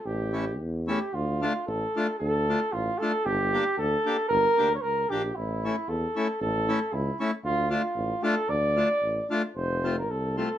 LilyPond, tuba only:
\new Staff \with { instrumentName = "Tuba" } { \clef bass \time 2/4 \key a \phrygian \tempo 4 = 113 a,,4 e,4 | \key d \minor d,4 a,,8 r8 | d,4 a,,8 r8 | g,,4 d,8 r8 |
g,,8 d,8 cis,8 bes,,8 | a,,4 e,8 r8 | a,,4 cis,8 r8 | d,4 a,,8 r8 |
d,4 a,,8 r8 | \key f \major f,,4 c,4 | }